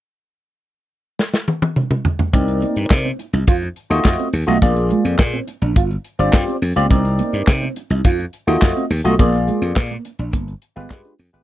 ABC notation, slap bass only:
X:1
M:4/4
L:1/16
Q:1/4=105
K:Cm
V:1 name="Slap bass" clef=bass
z16 | C,,3 G,, C,2 z C,, F,,2 z E,, F,, z E,, =B,,, | B,,,3 F,, B,,2 z B,,, G,,,2 z G,,, G,, z F,, _D,, | C,,3 G,, C,2 z C,, F,,2 z E,, F,, z E,, =B,,, |
B,,,3 F,, B,,2 z B,,, G,,,2 z G,,, G,, z F,, A,,, |]